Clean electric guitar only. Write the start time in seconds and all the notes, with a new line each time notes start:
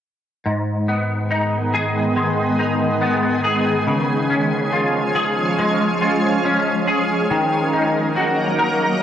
0.46 G#2
0.88 B3
1.31 D#4
1.74 G#4
2.16 G#3
2.59 D#4
3.01 B3
3.44 G#4
3.87 C#3
4.30 C#4
4.72 F4
5.15 G#4
5.58 G#3
6.01 F4
6.44 C#4
6.87 G#4
7.31 D#3
7.73 D#4
8.16 F#4
8.59 A#4